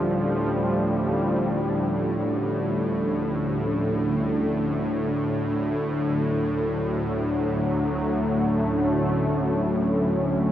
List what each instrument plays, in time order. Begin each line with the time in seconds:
Already playing: synth drone D2 A2, analog synth pad D3 F3 G3 C#4
5.38 analog synth pad F#3
6.66 analog synth pad A3
8.24 analog synth pad C#4